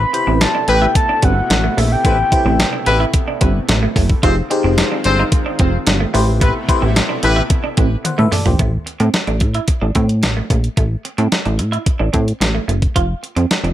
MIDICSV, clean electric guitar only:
0, 0, Header, 1, 3, 480
1, 0, Start_track
1, 0, Tempo, 545455
1, 1803, Time_signature, 4, 2, 24, 8
1, 12086, End_track
2, 0, Start_track
2, 0, Title_t, "Clean electric guitar"
2, 0, Program_c, 0, 27
2, 240, Note_on_c, 0, 60, 81
2, 323, Note_off_c, 0, 60, 0
2, 481, Note_on_c, 0, 62, 86
2, 564, Note_off_c, 0, 62, 0
2, 719, Note_on_c, 0, 64, 79
2, 803, Note_off_c, 0, 64, 0
2, 961, Note_on_c, 0, 62, 86
2, 1044, Note_off_c, 0, 62, 0
2, 1079, Note_on_c, 0, 60, 93
2, 1163, Note_off_c, 0, 60, 0
2, 1443, Note_on_c, 0, 57, 80
2, 1525, Note_off_c, 0, 57, 0
2, 1566, Note_on_c, 0, 57, 101
2, 1647, Note_off_c, 0, 57, 0
2, 1804, Note_on_c, 0, 57, 95
2, 1886, Note_off_c, 0, 57, 0
2, 2163, Note_on_c, 0, 60, 80
2, 2245, Note_off_c, 0, 60, 0
2, 2400, Note_on_c, 0, 62, 78
2, 2483, Note_off_c, 0, 62, 0
2, 2641, Note_on_c, 0, 64, 85
2, 2724, Note_off_c, 0, 64, 0
2, 2883, Note_on_c, 0, 62, 80
2, 2965, Note_off_c, 0, 62, 0
2, 3002, Note_on_c, 0, 60, 83
2, 3085, Note_off_c, 0, 60, 0
2, 3367, Note_on_c, 0, 57, 91
2, 3448, Note_off_c, 0, 57, 0
2, 3488, Note_on_c, 0, 57, 93
2, 3568, Note_off_c, 0, 57, 0
2, 3724, Note_on_c, 0, 65, 96
2, 3806, Note_off_c, 0, 65, 0
2, 4086, Note_on_c, 0, 60, 84
2, 4167, Note_off_c, 0, 60, 0
2, 4327, Note_on_c, 0, 62, 77
2, 4408, Note_off_c, 0, 62, 0
2, 4571, Note_on_c, 0, 63, 87
2, 4650, Note_off_c, 0, 63, 0
2, 4805, Note_on_c, 0, 62, 86
2, 4886, Note_off_c, 0, 62, 0
2, 4926, Note_on_c, 0, 60, 95
2, 5007, Note_off_c, 0, 60, 0
2, 5284, Note_on_c, 0, 57, 88
2, 5366, Note_off_c, 0, 57, 0
2, 5401, Note_on_c, 0, 57, 100
2, 5484, Note_off_c, 0, 57, 0
2, 5643, Note_on_c, 0, 57, 86
2, 5725, Note_off_c, 0, 57, 0
2, 6003, Note_on_c, 0, 60, 82
2, 6085, Note_off_c, 0, 60, 0
2, 6240, Note_on_c, 0, 62, 86
2, 6323, Note_off_c, 0, 62, 0
2, 6479, Note_on_c, 0, 64, 84
2, 6563, Note_off_c, 0, 64, 0
2, 6720, Note_on_c, 0, 62, 79
2, 6803, Note_off_c, 0, 62, 0
2, 6840, Note_on_c, 0, 60, 89
2, 6923, Note_off_c, 0, 60, 0
2, 7199, Note_on_c, 0, 57, 87
2, 7282, Note_off_c, 0, 57, 0
2, 7319, Note_on_c, 0, 57, 93
2, 7402, Note_off_c, 0, 57, 0
2, 7563, Note_on_c, 0, 57, 81
2, 7645, Note_off_c, 0, 57, 0
2, 7921, Note_on_c, 0, 60, 75
2, 8004, Note_off_c, 0, 60, 0
2, 8161, Note_on_c, 0, 62, 80
2, 8244, Note_off_c, 0, 62, 0
2, 8402, Note_on_c, 0, 64, 73
2, 8485, Note_off_c, 0, 64, 0
2, 8637, Note_on_c, 0, 62, 74
2, 8721, Note_off_c, 0, 62, 0
2, 8759, Note_on_c, 0, 60, 81
2, 8842, Note_off_c, 0, 60, 0
2, 9123, Note_on_c, 0, 57, 70
2, 9205, Note_off_c, 0, 57, 0
2, 9245, Note_on_c, 0, 57, 88
2, 9326, Note_off_c, 0, 57, 0
2, 9480, Note_on_c, 0, 57, 77
2, 9563, Note_off_c, 0, 57, 0
2, 9841, Note_on_c, 0, 60, 73
2, 9924, Note_off_c, 0, 60, 0
2, 10080, Note_on_c, 0, 62, 70
2, 10163, Note_off_c, 0, 62, 0
2, 10315, Note_on_c, 0, 64, 78
2, 10400, Note_off_c, 0, 64, 0
2, 10555, Note_on_c, 0, 62, 84
2, 10640, Note_off_c, 0, 62, 0
2, 10674, Note_on_c, 0, 60, 81
2, 10759, Note_off_c, 0, 60, 0
2, 11040, Note_on_c, 0, 57, 79
2, 11123, Note_off_c, 0, 57, 0
2, 11159, Note_on_c, 0, 57, 86
2, 11242, Note_off_c, 0, 57, 0
2, 11402, Note_on_c, 0, 65, 85
2, 11485, Note_off_c, 0, 65, 0
2, 11761, Note_on_c, 0, 60, 75
2, 11844, Note_off_c, 0, 60, 0
2, 12005, Note_on_c, 0, 62, 76
2, 12086, Note_off_c, 0, 62, 0
2, 12086, End_track
3, 0, Start_track
3, 0, Title_t, "Muted clean electric guitar strokes"
3, 116, Note_on_c, 9, 29, 46
3, 204, Note_off_c, 9, 29, 0
3, 600, Note_on_c, 9, 29, 43
3, 688, Note_off_c, 9, 29, 0
3, 842, Note_on_c, 9, 29, 43
3, 930, Note_off_c, 9, 29, 0
3, 1323, Note_on_c, 9, 29, 49
3, 1411, Note_off_c, 9, 29, 0
3, 2045, Note_on_c, 9, 29, 46
3, 2133, Note_off_c, 9, 29, 0
3, 2521, Note_on_c, 9, 29, 49
3, 2609, Note_off_c, 9, 29, 0
3, 2765, Note_on_c, 9, 29, 49
3, 2853, Note_off_c, 9, 29, 0
3, 3246, Note_on_c, 9, 29, 50
3, 3334, Note_off_c, 9, 29, 0
3, 3965, Note_on_c, 9, 29, 48
3, 4053, Note_off_c, 9, 29, 0
3, 4450, Note_on_c, 9, 29, 45
3, 4538, Note_off_c, 9, 29, 0
3, 4687, Note_on_c, 9, 29, 49
3, 4775, Note_off_c, 9, 29, 0
3, 5163, Note_on_c, 9, 29, 47
3, 5251, Note_off_c, 9, 29, 0
3, 5883, Note_on_c, 9, 29, 50
3, 5971, Note_off_c, 9, 29, 0
3, 6360, Note_on_c, 9, 29, 44
3, 6448, Note_off_c, 9, 29, 0
3, 6603, Note_on_c, 9, 29, 52
3, 6691, Note_off_c, 9, 29, 0
3, 7080, Note_on_c, 9, 29, 51
3, 7168, Note_off_c, 9, 29, 0
3, 7799, Note_on_c, 9, 29, 43
3, 7887, Note_off_c, 9, 29, 0
3, 8280, Note_on_c, 9, 29, 41
3, 8368, Note_off_c, 9, 29, 0
3, 8521, Note_on_c, 9, 29, 45
3, 8609, Note_off_c, 9, 29, 0
3, 9005, Note_on_c, 9, 29, 45
3, 9093, Note_off_c, 9, 29, 0
3, 9723, Note_on_c, 9, 29, 41
3, 9811, Note_off_c, 9, 29, 0
3, 10201, Note_on_c, 9, 29, 43
3, 10289, Note_off_c, 9, 29, 0
3, 10438, Note_on_c, 9, 29, 39
3, 10526, Note_off_c, 9, 29, 0
3, 10916, Note_on_c, 9, 29, 43
3, 11004, Note_off_c, 9, 29, 0
3, 11641, Note_on_c, 9, 29, 40
3, 11729, Note_off_c, 9, 29, 0
3, 12086, End_track
0, 0, End_of_file